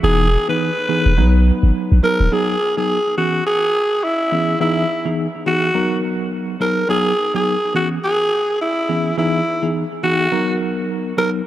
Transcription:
0.03 0.37 E1 loud
0.03 0.26 E3 medium
0.03 0.26 B3 medium
0.03 0.26 D#4 medium
0.03 0.26 G#4 loud
0.03 0.46 G#4 loud
0.48 0.69 E3 medium
0.48 0.69 B3 medium
0.48 0.69 D#4 medium
0.48 0.69 G#4 medium
0.48 1.59 B4 loud
0.89 1.11 E3 medium
0.89 1.11 B3 medium
0.89 1.12 D#4 medium
0.89 1.12 G#4 medium
1.06 1.19 E1 medium
1.17 1.51 B1 loud
1.17 1.97 F#3 medium
1.17 1.97 B3 medium
1.17 1.98 D#4 medium
1.17 1.98 B4 loud
1.63 1.72 G#1 medium
1.91 2.00 A#1 medium
2.03 2.26 F#3 medium
2.03 2.26 B3 medium
2.03 2.26 D#4 medium
2.03 2.26 A#4 medium
2.03 2.34 A#4 loud
2.20 2.29 D#1 medium
2.32 2.54 F#3 medium
2.32 2.54 B3 medium
2.32 2.54 D#4 medium
2.32 2.55 G#4 loud
2.32 2.77 G#4 loud
2.77 2.97 F#3 medium
2.77 2.97 B3 medium
2.77 2.97 D#4 medium
2.77 2.97 G#4 medium
2.77 3.15 G#4 medium
3.17 3.40 E3 medium
3.17 3.40 B3 medium
3.17 3.40 C#4 medium
3.17 3.44 F#4 medium
3.17 3.40 G#4 medium
3.47 4.05 G#4 loud
4.04 4.61 E4 medium
4.32 4.54 E3 medium
4.32 4.54 B3 medium
4.32 4.54 C#4 medium
4.32 4.55 G#4 medium
4.60 4.83 E3 medium
4.60 4.83 B3 medium
4.60 4.83 D#4 medium
4.60 5.14 E4 medium
4.60 4.83 G#4 loud
5.05 5.26 E3 medium
5.05 5.26 B3 medium
5.05 5.26 D#4 medium
5.05 5.26 G#4 medium
5.46 5.69 E3 medium
5.46 5.69 B3 medium
5.46 5.69 D#4 medium
5.46 6.00 F#4 loud
5.46 5.69 G#4 medium
5.74 6.54 F#3 medium
5.74 6.55 B3 medium
5.74 6.55 D#4 medium
5.74 6.55 A#4 medium
6.60 6.83 F#3 medium
6.60 6.83 B3 medium
6.60 6.83 D#4 medium
6.60 6.83 A#4 medium
6.60 6.87 A#4 loud
6.89 7.11 F#3 medium
6.89 7.12 B3 medium
6.89 7.12 D#4 medium
6.89 7.12 G#4 medium
6.89 7.31 G#4 loud
7.34 7.54 F#3 medium
7.34 7.54 B3 medium
7.34 7.54 D#4 medium
7.34 7.55 G#4 medium
7.34 7.72 G#4 medium
7.74 7.97 E3 medium
7.74 7.97 B3 medium
7.74 7.97 C#4 medium
7.74 7.88 F#4 medium
7.74 7.97 G#4 medium
8.04 8.57 G#4 loud
8.61 9.14 E4 medium
8.89 9.11 E3 medium
8.89 9.11 B3 medium
8.89 9.12 C#4 medium
8.89 9.12 G#4 medium
9.17 9.40 E3 medium
9.17 9.40 B3 medium
9.17 9.40 D#4 medium
9.17 9.71 E4 medium
9.17 9.40 G#4 medium
9.62 9.83 E3 medium
9.62 9.83 B3 medium
9.62 9.83 D#4 medium
9.62 9.83 G#4 medium
10.03 10.26 E3 medium
10.03 10.26 B3 medium
10.03 10.26 D#4 medium
10.03 10.57 F#4 loud
10.03 10.26 G#4 medium
10.32 11.12 F#3 medium
10.32 11.12 B3 medium
10.32 11.12 D#4 medium
10.32 11.12 A#4 medium
11.17 11.40 F#3 medium
11.17 11.40 B3 medium
11.17 11.40 D#4 medium
11.17 11.40 A#4 medium
11.17 11.31 A#4 medium

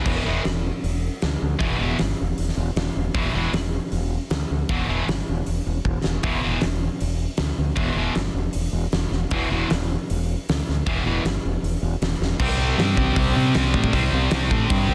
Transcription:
0.06 0.18 E1 medium
0.06 0.22 E2 medium
0.06 0.22 B2 medium
0.06 0.22 E3 loud
0.06 kick loud
0.06 crash loud
0.25 0.38 E1 medium
0.25 0.41 E2 medium
0.25 0.41 B2 medium
0.25 0.41 E3 medium
0.45 0.69 E1 medium
0.45 snare loud
0.45 open hi-hat medium
0.84 1.08 E1 medium
0.84 open hi-hat medium
1.22 1.35 D2 medium
1.22 snare loud
1.22 open hi-hat soft
1.42 1.54 D2 medium
1.59 1.73 E1 medium
1.59 1.75 E2 medium
1.59 1.76 B2 medium
1.59 1.76 E3 loud
1.59 kick loud
1.59 open hi-hat medium
1.79 1.93 E1 medium
1.79 1.95 E2 medium
1.79 1.95 B2 medium
1.79 1.95 E3 loud
1.99 2.12 G1 loud
1.99 snare loud
1.99 open hi-hat medium
2.21 2.32 E1 medium
2.38 2.50 E1 medium
2.38 open hi-hat medium
2.49 snare soft
2.57 2.69 E1 medium
2.76 2.88 E1 medium
2.76 snare loud
2.76 open hi-hat medium
2.96 3.08 E1 medium
3.15 3.27 E1 medium
3.15 3.31 E2 loud
3.15 3.31 B2 loud
3.15 3.31 E3 medium
3.15 kick loud
3.15 open hi-hat medium
3.34 3.46 E1 medium
3.34 3.50 E2 medium
3.34 3.50 B2 loud
3.34 3.51 E3 medium
3.52 3.77 E1 medium
3.52 snare loud
3.52 open hi-hat medium
3.92 4.17 E1 medium
3.92 open hi-hat medium
4.30 4.43 D2 medium
4.30 snare loud
4.30 open hi-hat soft
4.51 4.63 D2 medium
4.69 4.82 E1 medium
4.69 4.85 E2 medium
4.69 4.85 B2 medium
4.69 4.86 E3 medium
4.69 kick loud
4.69 open hi-hat soft
4.88 5.01 E1 medium
4.88 5.04 E2 medium
4.88 5.04 B2 medium
4.88 5.04 E3 loud
5.08 5.21 G1 medium
5.08 snare loud
5.08 open hi-hat medium
5.29 5.41 E1 medium
5.46 5.59 E1 medium
5.46 open hi-hat medium
5.66 5.78 E1 medium
5.85 5.97 E1 medium
5.85 kick medium
6.04 6.17 E1 medium
6.04 snare medium
6.23 6.36 E1 medium
6.23 6.39 E2 medium
6.23 6.39 B2 medium
6.23 6.40 E3 loud
6.23 kick loud
6.23 open hi-hat medium
6.43 6.56 E1 medium
6.43 6.58 E2 medium
6.43 6.58 B2 medium
6.43 6.59 E3 loud
6.61 6.88 E1 medium
6.61 snare loud
6.61 open hi-hat medium
7.00 7.25 E1 medium
7.00 open hi-hat medium
7.37 7.51 D2 medium
7.37 snare loud
7.37 open hi-hat soft
7.58 7.70 D2 medium
7.76 7.90 E1 medium
7.76 7.92 E2 loud
7.76 7.93 B2 loud
7.76 7.93 E3 medium
7.76 kick loud
7.76 open hi-hat soft
7.95 8.08 E1 medium
7.95 8.12 E2 medium
7.95 8.13 B2 medium
7.95 8.13 E3 medium
8.15 8.28 G1 medium
8.15 snare loud
8.15 open hi-hat medium
8.34 8.47 E1 medium
8.53 8.67 E1 medium
8.53 open hi-hat medium
8.72 8.85 E1 loud
8.92 9.05 E1 medium
8.92 snare medium
8.92 open hi-hat soft
9.11 9.24 E1 medium
9.11 snare soft
9.31 9.44 E1 loud
9.31 9.47 E2 medium
9.31 9.48 B2 loud
9.31 9.48 E3 medium
9.31 kick loud
9.31 open hi-hat medium
9.50 9.63 E1 medium
9.50 9.66 E2 medium
9.50 9.67 B2 medium
9.50 9.67 E3 loud
9.70 9.96 E1 medium
9.70 snare loud
9.70 open hi-hat medium
10.10 10.34 E1 medium
10.10 open hi-hat medium
10.49 10.61 D2 medium
10.49 snare medium
10.49 open hi-hat medium
10.69 10.80 D2 medium
10.69 snare soft
10.87 10.99 E1 medium
10.87 11.02 E2 medium
10.87 11.02 B2 medium
10.87 11.02 E3 loud
10.87 kick loud
10.87 open hi-hat medium
11.06 11.18 E1 medium
11.06 11.21 E2 medium
11.06 11.21 B2 loud
11.06 11.21 E3 loud
11.25 11.37 G1 medium
11.25 snare loud
11.25 open hi-hat medium
11.45 11.57 E1 medium
11.63 11.75 E1 medium
11.63 open hi-hat medium
11.82 11.94 E1 medium
12.01 12.14 E1 medium
12.01 snare medium
12.01 open hi-hat soft
12.20 12.32 E1 medium
12.20 snare medium
12.40 12.73 C2 medium
12.40 13.92 C3 loud
12.40 13.94 G3 loud
12.40 13.93 C4 loud
12.40 kick loud
12.40 crash loud
12.78 12.95 G2 medium
12.78 snare loud
12.78 open hi-hat medium
12.97 13.14 C2 medium
12.97 kick medium
13.16 13.33 C2 medium
13.16 kick loud
13.16 open hi-hat medium
13.36 13.52 C3 medium
13.55 13.72 C2 medium
13.55 snare loud
13.55 open hi-hat medium
13.74 13.91 A2 medium
13.74 kick medium
13.84 kick loud
13.93 14.10 C2 medium
13.93 14.94 C3 medium
13.93 14.94 G3 medium
13.93 14.94 C4 medium
13.93 kick medium
13.93 open hi-hat medium
14.12 14.29 C2 medium
14.31 14.48 C2 loud
14.31 snare loud
14.31 open hi-hat medium
14.42 snare soft
14.51 14.67 A2 medium
14.51 kick loud
14.70 14.87 G2 medium
14.70 kick loud
14.70 open hi-hat medium
14.89 14.94 C2 loud

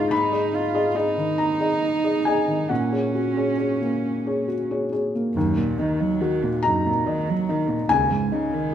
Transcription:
0.00 0.10 G#2 medium
0.00 0.13 D#4 medium
0.00 0.11 F4 medium
0.00 0.14 G#4 soft
0.00 0.14 D#5 medium
0.00 0.14 C#6 medium
0.10 0.31 G#2 medium
0.10 0.56 D#4 medium
0.10 1.35 B5 medium
0.32 0.51 G#4 soft
0.32 0.51 D#5 soft
0.53 0.87 D#4 soft
0.53 0.98 F4 medium
0.75 0.93 G#4 soft
0.75 0.94 D#5 soft
0.95 2.72 D#4 medium
0.95 1.14 G#4 soft
0.95 1.15 D#5 soft
1.17 1.86 D#3 soft
1.38 2.22 A#5 medium
1.60 1.80 G#4 soft
1.60 1.80 D#5 soft
1.83 2.17 D#4 soft
2.04 2.24 G#4 soft
2.04 2.24 D#5 soft
2.25 2.46 G#4 soft
2.25 2.46 D#5 soft
2.25 2.67 G#5 medium
2.47 2.70 D#3 soft
2.69 2.91 A#2 soft
2.69 4.70 C#4 medium
2.69 4.87 F#5 medium
2.92 3.12 G#4 soft
2.92 3.12 C#5 soft
3.15 3.50 F#4 soft
3.37 3.56 G#4 soft
3.37 3.57 C#5 soft
3.58 3.78 G#4 soft
3.58 3.79 C#5 soft
3.81 4.52 A#3 soft
4.26 4.46 G#4 soft
4.26 4.46 C#5 soft
4.48 4.83 F#4 soft
4.71 4.90 G#4 soft
4.71 4.91 C#5 soft
4.92 5.12 G#4 soft
4.92 5.12 C#5 soft
5.15 5.36 A#3 soft
5.35 7.86 D#2 medium
5.35 5.59 F#2 medium
5.57 5.80 A#2 medium
5.79 6.02 D#3 medium
5.79 6.47 D#4 medium
6.00 6.22 F#3 medium
6.21 6.45 D#3 medium
6.21 6.89 F#4 medium
6.44 6.67 A#2 medium
6.63 6.88 F#2 medium
6.63 7.32 D#4 medium
6.63 7.86 A#5 medium
6.86 7.08 A#2 medium
7.07 7.31 D#3 medium
7.07 7.74 D#5 medium
7.29 7.52 F#3 medium
7.49 7.71 D#3 medium
7.49 7.90 D#4 medium
7.70 7.90 A#2 medium
7.89 8.74 C#2 medium
7.89 8.14 D#2 medium
7.89 8.74 G#5 medium
8.12 8.34 G#2 medium
8.32 8.55 C#3 medium
8.32 8.74 D#4 medium
8.54 8.74 D#3 medium

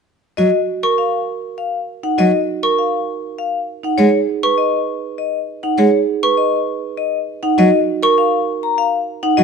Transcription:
0.37 0.50 F#3 soft
0.37 0.58 F#4 medium
0.37 0.57 D#5 medium
0.83 1.03 A#4 medium
0.83 1.03 C#6 medium
0.98 1.18 F5 soft
1.58 1.78 F5 soft
2.03 2.23 D#4 soft
2.03 2.23 F#5 soft
2.18 2.30 F#3 medium
2.18 2.38 F#4 medium
2.18 2.38 D#5 medium
2.63 2.83 A#4 medium
2.63 2.83 C#6 medium
2.79 2.98 F5 soft
3.38 3.58 F5 soft
3.83 4.03 D#4 soft
3.83 4.03 F#5 soft
3.98 4.10 G#3 medium
3.98 4.18 G#4 medium
3.98 4.17 C#5 medium
4.43 4.63 B4 medium
4.43 4.63 C#6 medium
4.58 4.78 D#5 soft
5.18 5.38 D#5 soft
5.63 5.83 D#4 soft
5.63 5.83 F#5 soft
5.78 5.89 G#3 medium
5.78 5.98 G#4 medium
5.78 5.98 C#5 medium
6.23 6.43 B4 medium
6.23 6.43 C#6 medium
6.37 6.57 D#5 soft
6.97 7.17 D#5 medium
7.43 7.63 D#4 medium
7.43 7.62 F#5 medium
7.58 7.70 F#3 medium
7.58 7.78 F#4 medium
7.58 7.78 D#5 medium
8.03 8.22 A#4 medium
8.03 8.23 C#6 medium
8.18 8.38 F5 medium
8.63 8.83 A#5 medium
8.78 8.98 F5 medium
9.23 9.43 D#4 medium
9.23 9.43 F#5 medium
9.37 9.44 F#3 medium
9.37 9.44 F#4 medium
9.37 9.44 D#5 medium

